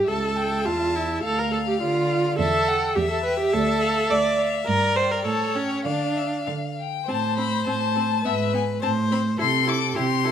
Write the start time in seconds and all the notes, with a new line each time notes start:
0.08 C#2 A4 E5 A5
0.37 G5
0.66 E2 F4 A5
0.95 E4
1.23 D2 A4 F5
1.38 A#4
1.52 A4
1.68 G4
1.81 D3 F4 D5
2.38 E2 A4 E5
2.67 F#5 G5
2.95 E2 G4 E5
3.10 A4
3.24 B4 G5
3.39 G4
3.53 D2 A4 D5
3.81 F5
4.09 D2 D5
4.38 F5
4.67 G2 A#4 D5 A#5
4.96 C5 G5
5.11 A#4
5.25 A2 A4 C#5 A5
5.55 C#4 G5
5.85 D3 D4 D5 F5
6.16 E5
6.47 D3 F5
6.78 G5
7.07 A2 C4 C5 A5
7.37 C4 B5
7.66 A2 C4 A5
7.95 C4
8.24 G#2 B3 B4 E5
8.53 B3 G#5
8.82 A2 C4 C5 A5
9.11 C4 B5
9.38 C3 E4 A4 C6
9.66 E4 D6
9.95 C3 E4 G4 C6
10.25 E4 A4